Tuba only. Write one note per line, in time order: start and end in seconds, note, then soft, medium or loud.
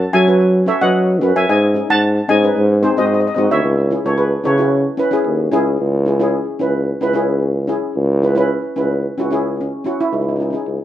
0.14 0.67 F#3 loud
0.82 1.24 F#3 medium
1.22 1.33 F#2 loud
1.36 1.46 F#2 medium
1.49 1.81 G#2 loud
1.89 2.20 G#2 medium
2.29 2.50 G#2 loud
2.56 2.88 G#2 loud
2.97 3.28 G#2 medium
3.37 3.48 G#2 medium
3.51 3.61 D2 medium
3.64 3.96 C#2 medium
4.05 4.36 C#2 medium
4.46 4.87 C#3 medium
5.26 5.50 D#2 medium
5.53 5.77 C#2 medium
5.80 6.43 C#2 loud
6.62 6.93 C#2 medium
7.02 7.75 C#2 medium
7.95 8.58 C#2 loud
8.78 9.09 C#2 medium
9.19 9.70 C#2 medium
10.12 10.54 C#2 medium
10.67 10.78 C#2 medium